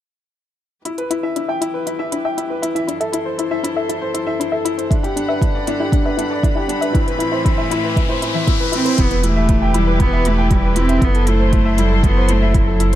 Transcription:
0.84 E2 E3 E4 G4 B4, closed hi-hat
0.98 B4, closed hi-hat
1.10 E4, closed hi-hat
1.23 E4 E5
1.36 D4 E4, closed hi-hat
1.49 E5 G5
1.61 E4, closed hi-hat
1.74 B4
1.86 E4, closed hi-hat
1.99 E4 E5
2.12 D4 E4, closed hi-hat
2.25 E5 G5
2.37 E4, closed hi-hat
2.50 B4
2.62 E4, closed hi-hat
2.75 E4 E5, closed hi-hat
2.87 F#2 D4 E4 A4 C5, closed hi-hat
3.00 A4 E5, closed hi-hat
3.12 E4, closed hi-hat
3.25 C5
3.38 E4, closed hi-hat
3.51 E4 E5
3.63 D4 E4, closed hi-hat
3.76 A4 E5
3.89 E4, closed hi-hat
4.01 C5
4.14 E4, closed hi-hat
4.27 E4 E5
4.40 D4 E4, closed hi-hat
4.52 A4 E5
4.65 E4, closed hi-hat
4.78 C5, closed hi-hat
4.89 G2 D3 D4 E4 F#5 B5, kick, closed hi-hat, riser
5.03 E4 G4, closed hi-hat
5.16 D4, closed hi-hat
5.29 B4 E5
5.41 D4 E4, kick, closed hi-hat
5.55 D5
5.67 D4 E4, closed hi-hat
5.80 E4 G4
5.92 D4, kick, closed hi-hat
6.05 B4 E5
6.17 D4 E4, closed hi-hat
6.31 D5
6.43 D4 E4, kick, closed hi-hat
6.55 E4 G4
6.68 D4, closed hi-hat
6.81 B4 E5, closed hi-hat
6.93 A2 E3 C4 E4, kick, closed hi-hat
7.07 B4, closed hi-hat
7.19 E4, closed hi-hat
7.32 E4 C5
7.45 D4 E4, kick, closed hi-hat
7.58 E5
7.71 E4, closed hi-hat
7.84 B4
7.96 E4, kick, closed hi-hat
8.09 E4 C5
8.22 E4, closed hi-hat
8.34 E3 E5
8.47 B3 E4, kick, closed hi-hat
8.60 B4
8.72 C4 E4, closed hi-hat
8.85 B4 C5, closed hi-hat
8.98 E1 E3 B3 E4 G4 B4, kick, closed hi-hat
9.11 B4, closed hi-hat
9.23 A3 E4, closed hi-hat
9.36 E5
9.49 E4, kick, closed hi-hat
9.62 G5
9.74 G3 E4, closed hi-hat
9.87 B4
9.99 B3 E4, kick, closed hi-hat
10.13 E5
10.25 A3 E4, closed hi-hat
10.38 G5
10.51 G3 E4, kick, closed hi-hat
10.64 B4
10.76 C4 E4, closed hi-hat
10.89 E5, closed hi-hat
11.02 F#1 F#3 B3 E4 A4 C5, kick, closed hi-hat
11.15 A4, closed hi-hat
11.27 A3 E4, closed hi-hat
11.40 C5
11.53 E4, kick, closed hi-hat
11.65 E5
11.78 G3 E4, closed hi-hat
11.91 A4
12.03 B3 E4, kick, closed hi-hat
12.17 C5
12.29 A3 E4, closed hi-hat
12.42 E5
12.54 F#3 E4, kick, closed hi-hat
12.67 A4
12.80 E4, closed hi-hat

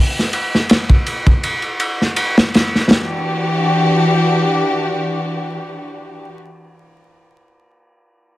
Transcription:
0.19 snare
0.33 ride
0.55 snare
0.69 snare, ride
0.90 kick
1.06 ride
1.27 kick
1.43 ride
1.62 ride
1.80 ride
2.02 snare
2.16 ride
2.38 snare
2.54 snare, ride
2.75 snare
2.90 E3 D4 F#4 G4, snare

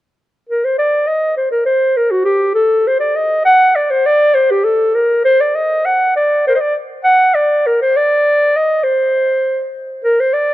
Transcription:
0.49 A#4
0.64 C5
0.78 D5
1.07 D#5
1.37 C5
1.51 A#4
1.65 C5
1.97 A#4
2.11 F#4
2.24 G4
2.55 A4
2.88 C5
3.00 D5
3.16 D#5
3.45 F#5
3.76 D5
3.90 C5
4.06 D5
4.34 C5
4.51 G4
4.64 A4
4.95 A#4
5.25 C5
5.40 D5
5.55 D#5
5.85 F#5
6.16 D5
6.47 A#4 C5
6.55 C5 D#5
6.61 D5
7.04 F#5
7.35 D5
7.66 A#4
7.82 C5
7.96 D5
8.56 D#5
8.84 C5
10.04 A#4
10.20 C5
10.33 D5

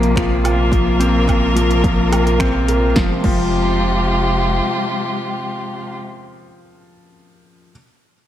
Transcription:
Already playing: A#1 C3 F3 A#3 C4 F4
0.03 closed hi-hat
0.16 F3, finger snap, kick, closed hi-hat
0.44 F4, closed hi-hat, low woodblock
0.49 A#4
0.71 F3, kick, closed hi-hat
1.00 C4, closed hi-hat
1.27 F3, kick, closed hi-hat, low woodblock
1.55 F3, closed hi-hat
1.71 closed hi-hat
1.84 F3, kick, closed hi-hat
2.12 A#4, closed hi-hat, low woodblock
2.27 closed hi-hat
2.40 C4, finger snap, kick, closed hi-hat
2.68 A#4, closed hi-hat
2.95 F1 C3 F3, kick, snare
3.05 G#3
3.12 F4
3.22 F1 F3 G4, kick, crash

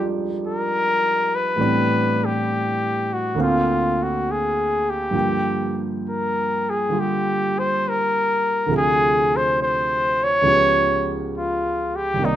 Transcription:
Already playing: F2 F3 G3 G#3 D4 D#4 F4 G4
0.46 A#4
1.35 B4
1.56 A2 E3 G3 B3 C4
1.61 D4
2.25 G4
3.13 F#4
3.34 D2 D3 A#3
3.39 C4 F5
3.43 F4
4.03 F#4
4.31 G#4
4.90 G4
5.11 G2 D3 F3 A#3
5.16 G5
6.08 A#4
6.70 G#4
6.89 D3 G3 F4
7.00 G4
7.59 C5
7.89 A#4
8.66 D2 C3 D3 F3
8.71 G#4
8.77 G#4
9.36 C5
9.62 C5
10.23 C#5
10.42 C#2 C#3 F3 B3
10.46 G4
11.37 F4
11.96 G4
12.14 C2 C3
12.19 D#3 A#3
12.24 D#4 D5

